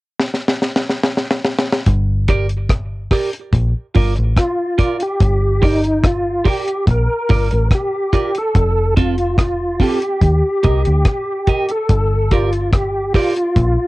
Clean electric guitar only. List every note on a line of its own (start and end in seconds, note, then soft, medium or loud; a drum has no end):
2.29 2.46 G4 medium
2.29 2.46 A#4 loud
2.29 2.47 D5 loud
3.11 3.29 G4 medium
3.11 3.29 A#4 medium
3.11 3.30 D5 medium
3.95 4.12 F4 medium
3.95 4.13 A#4 medium
3.95 4.13 D5 medium
4.16 muted clean electric guitar stroke medium
4.78 4.96 F4 medium
4.78 4.96 A#4 medium
4.78 4.97 D5 medium
5.00 muted clean electric guitar stroke soft
5.62 5.80 G4 medium
5.62 5.80 A#4 loud
5.62 5.80 D5 loud
6.45 6.63 G4 medium
6.45 6.63 A#4 medium
6.45 6.63 D5 medium
7.29 7.47 F4 medium
7.29 7.47 A#4 medium
7.29 7.48 D5 medium
7.51 muted clean electric guitar stroke soft
8.13 8.30 F4 medium
8.13 8.31 A#4 medium
8.13 8.31 D5 loud
8.35 muted clean electric guitar stroke soft
8.97 9.14 C4 loud
8.97 9.14 F4 loud
8.97 9.15 A4 medium
9.80 9.98 C4 medium
9.80 9.98 F4 medium
9.80 9.98 A4 medium
10.63 10.81 G4 medium
10.63 10.81 A#4 medium
10.63 10.82 D#5 medium
10.85 muted clean electric guitar stroke medium
11.47 11.65 G4 medium
11.47 11.65 A#4 medium
11.47 11.66 D#5 loud
11.70 muted clean electric guitar stroke soft
12.32 12.49 G4 medium
12.32 12.49 A#4 loud
12.32 12.50 D5 loud
13.14 13.32 G4 medium
13.14 13.32 A#4 medium
13.14 13.33 D5 loud